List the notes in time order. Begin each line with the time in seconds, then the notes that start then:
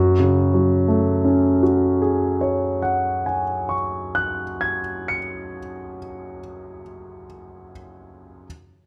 Already playing: F#2 F#4
0.19 C#3
0.54 F#3
0.88 A3
1.25 C#4
1.63 F#4
2.02 G#4
2.41 C#5
2.82 F#5
3.26 G#5
3.69 C#6
4.15 F#6
4.61 G#6
5.08 C#7